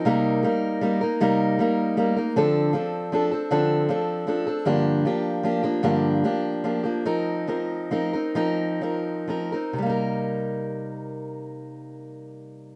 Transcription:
X:1
M:6/8
L:1/16
Q:3/8=51
K:Cdor
V:1 name="Steel-string acoustic guitar"
[C,G,B,EB]2 [G,B,EB]2 [G,B,EB] [B,EB] [C,G,B,EB]2 [G,B,EB]2 [G,B,EB] [B,EB] | [D,F,CDA]2 [F,CDA]2 [F,CDA] [CDA] [D,F,CDA]2 [F,CDA]2 [F,CDA] [CDA] | [G,,D,F,B,DG]2 [F,B,DG]2 [F,B,DG] [F,B,DG] [G,,D,F,B,DG]2 [F,B,DG]2 [F,B,DG] [F,B,DG] | [F,CEB]2 [F,CEB]2 [F,CEB] [CEB] [F,CEB]2 [F,CEB]2 [F,CEB] [CEB] |
[C,G,B,EB]12 |]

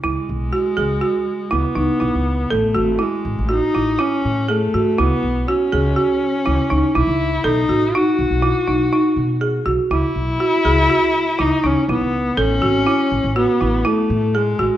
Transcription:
X:1
M:5/4
L:1/16
Q:1/4=122
K:C#m
V:1 name="Marimba"
E4 F2 G2 F4 E2 D2 E4 | A2 F2 E4 F2 E2 E4 G2 F2 | E4 F2 G2 F4 E2 D2 E4 | A2 F2 D4 E2 D2 D4 G2 F2 |
E4 F2 G2 F4 E2 D2 E4 | A2 F2 E4 F2 E2 E4 G2 F2 |]
V:2 name="Viola"
G,12 B,8 | A,4 G,4 D4 C4 A,4 | B,4 C12 E4 | D4 F12- F2 z2 |
E12 D2 C2 B,4 | C8 B,4 A,4 G,4 |]
V:3 name="Upright bass" clef=bass
C,, z B,,,2 z2 C,,2 z4 C,, z C,, z B,,, C,,3 | A,,,2 G,,,2 z2 A,,, A,,,2 z A,,,2 z2 A,,4 G,, z | C,, z B,,,2 z2 C,,2 z4 C,, z C,, z B,,, C,,3 | B,,,2 A,,,2 z2 B,,, B,,,2 z B,,,2 z2 B,,4 B,,, z |
C,, z B,,,2 z2 C,,2 z4 C,, z C,, z B,,, C,,3 | A,,,2 G,,,2 z2 A,,, A,,,2 z A,,,2 z2 A,,4 A,,, z |]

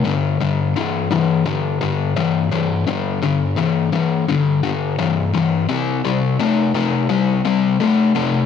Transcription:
X:1
M:4/4
L:1/8
Q:1/4=85
K:Cdor
V:1 name="Distorted electric guitar" clef=bass
[G,,D,] [G,,D,] [G,,=E,] [G,,E,] [G,,D,] [G,,D,] [G,,E,] [G,,E,] | [G,,D,] [G,,D,] [G,,=E,] [G,,E,] [G,,D,] [G,,D,] [G,,E,] [G,,E,] | [C,G,] [C,G,] [C,A,] [C,A,] [C,G,] [C,G,] [C,A,] [C,A,] |]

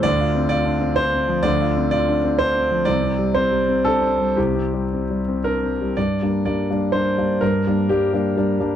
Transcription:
X:1
M:3/4
L:1/8
Q:1/4=126
K:Gdor
V:1 name="Grand piano"
d2 d2 c2 | d2 d2 c2 | d2 c2 A2 | G4 B2 |
d2 d2 c2 | B2 G2 z2 |]
V:2 name="Grand piano"
(3[D,,D,] F C (3F D C (3D C F, | (3[D,,D,] F C (3F D C (3D C F, | (3[C,,C,] C G, (3C G, C (3D C G, | (3[C,,C,] C G, (3C G, C (3D C G, |
G,, [G,B,D] [G,B,D] [G,B,D] [G,B,D] [G,B,D] | G,, [G,B,D] [G,B,D] [G,B,D] [G,B,D] [G,B,D] |]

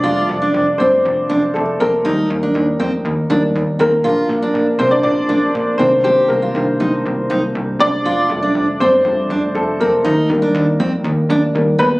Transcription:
X:1
M:4/4
L:1/16
Q:1/4=120
K:Fmix
V:1 name="Steel-string acoustic guitar"
F2 z D2 z C z3 D z3 C z | E2 z D2 z C z3 D z3 C z | F2 z D2 z C z3 D z3 C z | G2 z F2 z E z3 E z3 C z |
F2 z D2 z C z3 D z3 C z | E2 z D2 z C z3 D z3 C z |]
V:2 name="Upright piano"
[Dd]6 [Cc]6 [A,A]2 [B,B]2- | [B,B]4 z8 z2 [B,B]2- | [B,B]6 [Cc] [Dd] [Dd]6 [Cc]2 | [Cc]2 [B,B]8 z4 [Dd]2- |
[Dd]6 [Cc]6 [A,A]2 [B,B]2- | [B,B]4 z8 z2 [_C_c]2 |]
V:3 name="Upright piano"
[G,A,F]6 z8 z2 | [G,B,E]2 z8 [G,B,E]2 z4 | [F,B,D]2 z12 [E,B,D]2- | [E,B,D]4 [E,B,D]2 z8 z2 |
z2 [F,G,A,]6 [F,G,A,]2 z6 | z2 [E,G,B,]6 z4 [E,G,B,]2 z2 |]
V:4 name="Analog synth bass" clef=bass
F,,,2 F,,,2 F,,,2 G,,,2 F,,,2 F,,,2 F,,,2 F,,,2 | E,,2 E,,2 E,,2 F,,2 E,,2 E,,2 E,,2 E,,2 | B,,,2 B,,,2 B,,,2 C,,2 B,,,2 B,,,2 B,,,2 C,,2- | C,,2 C,,2 C,,2 C,,2 C,,2 C,,2 C,,2 C,,2 |
F,,,2 F,,,2 F,,,2 G,,,2 F,,,2 F,,,2 F,,,2 F,,,2 | E,,2 E,,2 E,,2 F,,2 E,,2 E,,2 E,,2 E,,2 |]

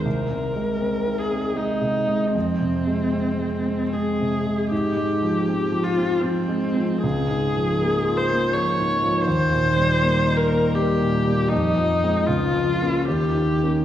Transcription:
X:1
M:3/4
L:1/8
Q:1/4=79
K:Fm
V:1 name="Viola"
B3 A E2 | C4 A2 | G3 F C2 | A3 c d2 |
c3 B G2 | E2 F2 G2 |]
V:2 name="Grand piano" clef=bass
(3C,, C, A, (3C E C (3A, C, A, | (3F,, C, A, (3C A, C (3A, C, A, | (3A,, A, F, (3C F, C (3F, A, F, | (3D,, A,, F, (3B, F B, (3F, A,, F, |
(3E,, B,, G, (3B, E B, (3G, B,, G, | (3F,, F, [A,C] (3D,, F, [B,D] (3E,, E, [B,D] |]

